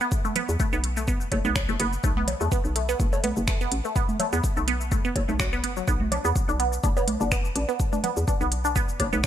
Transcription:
0.01 synth arpeggio sound B3, cabasa
0.12 kick, cabasa
0.25 synth arpeggio sound A3, high conga, cabasa
0.36 synth arpeggio sound B3, closed hi-hat, low conga
0.49 fm bass E2, cabasa
0.60 synth arpeggio sound A3, kick, cabasa
0.73 fm bass B1, synth arpeggio sound B3, cabasa
0.84 closed hi-hat
0.97 synth arpeggio sound A3, cabasa
1.08 fm bass F#1, synth arpeggio sound B3, kick, cabasa
1.21 cabasa
1.32 fm bass F#1, synth arpeggio sound A3, kick, closed hi-hat, high bongo
1.45 fm bass B1, synth arpeggio sound B3, high conga, cabasa
1.56 finger snap, kick, high bongo, cabasa
1.69 fm bass F#1, synth arpeggio sound A3, cabasa
1.80 fm bass F#1, synth arpeggio sound B3, closed hi-hat
1.93 cabasa
2.04 fm bass B1, synth arpeggio sound A3, kick, cabasa
2.17 synth arpeggio sound B3, high conga
2.28 closed hi-hat, high bongo, low conga
2.41 fm bass E2, synth arpeggio sound A3, cabasa
2.52 synth arpeggio sound B3, kick, cabasa
2.65 fm bass B1, cabasa
2.76 synth arpeggio sound A3, closed hi-hat
2.89 synth arpeggio sound B3, cabasa
3.00 fm bass F#1, kick, cabasa
3.13 synth arpeggio sound A3, high bongo, cabasa
3.24 fm bass B1, synth arpeggio sound B3, closed hi-hat, high conga
3.37 fm bass F#1, cabasa
3.48 synth arpeggio sound A3, finger snap, kick, cabasa
3.61 synth arpeggio sound B3, cabasa
3.72 fm bass A1, closed hi-hat
3.85 synth arpeggio sound A3, cabasa
3.96 synth arpeggio sound B3, kick, cabasa
4.09 high conga, cabasa
4.20 synth arpeggio sound A3, closed hi-hat, high bongo, low conga
4.33 fm bass E2, synth arpeggio sound B3, cabasa
4.44 kick, cabasa
4.57 fm bass B1, synth arpeggio sound A3, cabasa
4.68 synth arpeggio sound B3, closed hi-hat
4.81 cabasa
4.92 fm bass F#1, synth arpeggio sound A3, kick, cabasa
5.05 synth arpeggio sound B3, cabasa
5.16 fm bass F#1, kick, closed hi-hat, high bongo
5.29 fm bass B1, synth arpeggio sound A3, high conga, cabasa
5.40 synth arpeggio sound F#4, finger snap, kick, high bongo, cabasa
5.53 synth arpeggio sound B3, cabasa
5.64 fm bass F#1, synth arpeggio sound B3, closed hi-hat
5.77 synth arpeggio sound F#3, cabasa
5.88 fm bass B1, synth arpeggio sound B3, kick, cabasa
6.01 high conga
6.12 synth arpeggio sound D4, closed hi-hat, high bongo, low conga
6.25 fm bass E2, synth arpeggio sound B3, cabasa
6.36 kick, cabasa
6.49 fm bass B1, synth arpeggio sound D4, cabasa
6.60 synth arpeggio sound B3, closed hi-hat
6.73 cabasa
6.84 fm bass F#1, synth arpeggio sound D4, kick, cabasa
6.97 synth arpeggio sound B3, high bongo, cabasa
7.08 fm bass B1, closed hi-hat, high conga
7.21 fm bass F#1, synth arpeggio sound D4, cabasa
7.32 synth arpeggio sound B3, finger snap, kick, cabasa
7.45 cabasa
7.56 fm bass A1, synth arpeggio sound D4, closed hi-hat
7.69 synth arpeggio sound B3, cabasa
7.80 kick, cabasa
7.93 synth arpeggio sound D4, high conga, cabasa
8.04 synth arpeggio sound B3, closed hi-hat, low conga
8.17 fm bass E2, cabasa
8.28 synth arpeggio sound D4, kick, cabasa
8.41 fm bass B1, synth arpeggio sound B3, cabasa
8.52 closed hi-hat
8.65 synth arpeggio sound D4, cabasa
8.76 fm bass F#1, synth arpeggio sound B3, kick, cabasa
8.89 cabasa
9.00 fm bass F#1, synth arpeggio sound D4, kick, closed hi-hat, high bongo
9.13 fm bass B1, synth arpeggio sound B3, high conga, cabasa
9.24 finger snap, kick, high bongo, cabasa

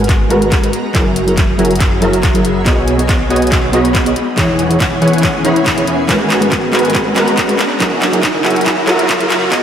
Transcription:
Already playing: detuned saw bass G#1, supersaw synth G#3 F#4 A#4 B4 G#5, ambient pad G#3 B3 F#4 A#5, riser
0.04 closed hi-hat
0.09 kick, clap, closed hi-hat
0.29 detuned saw bass G#1, tine electric piano G#3 F#4 A#4 B4, supersaw synth G#3 F#4 A#4 B4 A#5, closed hi-hat
0.42 closed hi-hat
0.52 kick, clap, closed hi-hat
0.62 tine electric piano G#3 F#4 A#4 B4, closed hi-hat
0.73 ambient pad F#3 E4 G#4, closed hi-hat
0.94 detuned saw bass F#1, tine electric piano F#3 E4 G#4 A#4, supersaw synth F#3 F#4 A#4 E5 G#5, kick, clap, closed hi-hat
1.16 closed hi-hat
1.27 tine electric piano F#3 E4 G#4 A#4, closed hi-hat
1.37 kick, clap, closed hi-hat
1.58 detuned saw bass F#1, tine electric piano F#3 E4 G#4 A#4, supersaw synth F#3 F#4 A#4 E5 G#5, closed hi-hat
1.65 closed hi-hat
1.71 closed hi-hat
1.75 closed hi-hat
1.80 kick, clap, closed hi-hat
2.01 detuned saw bass F#1, tine electric piano F#3 E4 G#4 A#4, supersaw synth F#3 F#4 A#4 E5 A#5, closed hi-hat
2.13 closed hi-hat
2.23 kick, clap, closed hi-hat
2.34 tine electric piano F#3 E4 G#4 A#4, closed hi-hat
2.45 closed hi-hat
2.65 detuned saw bass B1, ambient pad G#3 B3 D#4, tine electric piano B3 F#4 G#4 D#5, supersaw synth B3 F#4 C#5 D#5 G#5, kick, clap, closed hi-hat
2.88 closed hi-hat
2.98 tine electric piano B3 F#4 G#4 D#5, closed hi-hat
3.09 kick, clap, closed hi-hat
3.29 detuned saw bass B1, tine electric piano B3 F#4 G#4 D#5, supersaw synth B3 F#4 C#5 D#5 G#5, closed hi-hat
3.36 closed hi-hat
3.42 closed hi-hat
3.47 closed hi-hat
3.52 kick, clap, closed hi-hat
3.72 detuned saw bass B1, tine electric piano B3 F#4 G#4 D#5, supersaw synth B3 F#4 C#5 D#5 B5, closed hi-hat
3.85 closed hi-hat
3.95 kick, clap, closed hi-hat
4.05 tine electric piano B3 F#4 G#4 D#5, closed hi-hat
4.16 ambient pad E3 C#4 G#4, closed hi-hat
4.36 detuned saw bass E1, tine electric piano E3 E4 G#4 C#5, supersaw synth E3 E4 C#5 F#5 G#5, kick, clap, closed hi-hat
4.59 closed hi-hat
4.70 tine electric piano E3 E4 G#4 C#5, closed hi-hat
4.80 kick, clap, closed hi-hat
5.01 detuned saw bass E1, tine electric piano E3 E4 G#4 C#5, supersaw synth E3 E4 C#5 F#5 G#5, closed hi-hat
5.08 closed hi-hat
5.13 closed hi-hat
5.18 closed hi-hat
5.23 kick, clap, closed hi-hat
5.44 detuned saw bass E1, tine electric piano E3 E4 G#4 C#5, supersaw synth E3 E4 C#5 F#5 B5, closed hi-hat
5.56 closed hi-hat
5.66 kick, clap, closed hi-hat
5.77 tine electric piano E3 E4 G#4 C#5, closed hi-hat
5.87 closed hi-hat
6.08 detuned saw bass G#1, tine electric piano G#3 F#4 A#4 B4, ambient pad G#3 B3 F#4 A#5, supersaw synth G#3 F#4 A#4 B4 G#5, kick, clap, closed hi-hat
6.30 clap, closed hi-hat
6.41 tine electric piano G#3 F#4 A#4 B4, closed hi-hat
6.52 kick, clap, closed hi-hat
6.72 detuned saw bass G#1, tine electric piano G#3 F#4 A#4 B4, supersaw synth G#3 F#4 A#4 B4 G#5, clap, closed hi-hat
6.79 closed hi-hat
6.85 closed hi-hat
6.90 closed hi-hat
6.95 kick, clap, closed hi-hat
7.15 detuned saw bass G#1, tine electric piano G#3 F#4 A#4 B4, supersaw synth G#3 F#4 A#4 B4 A#5, clap, closed hi-hat
7.28 closed hi-hat
7.37 kick, clap, closed hi-hat
7.48 tine electric piano G#3 F#4 A#4 B4, closed hi-hat
7.59 ambient pad F#3 E4 G#4 A#4, clap, closed hi-hat
7.79 detuned saw bass F#1, tine electric piano F#3 E4 G#4 A#4, supersaw synth F#3 F#4 A#4 E5 G#5, kick, clap, closed hi-hat
8.02 clap, closed hi-hat
8.12 tine electric piano F#3 E4 G#4 A#4, closed hi-hat
8.23 kick, clap, closed hi-hat
8.44 detuned saw bass F#1, tine electric piano F#3 E4 G#4 A#4, supersaw synth F#3 F#4 A#4 E5 G#5, clap, closed hi-hat
8.50 closed hi-hat
8.56 closed hi-hat
8.61 closed hi-hat
8.66 kick, clap, closed hi-hat
8.87 detuned saw bass F#1, tine electric piano F#3 E4 G#4 A#4, supersaw synth F#3 F#4 A#4 E5 A#5, clap, closed hi-hat
8.99 closed hi-hat
9.09 kick, clap, closed hi-hat
9.20 tine electric piano F#3 E4 G#4 A#4, closed hi-hat
9.30 clap, closed hi-hat
9.51 detuned saw bass B1, ambient pad G#3 B3 D#4, tine electric piano B3 F#4 G#4 D#5, supersaw synth B3 F#4 C#5 D#5 G#5, kick, clap, closed hi-hat

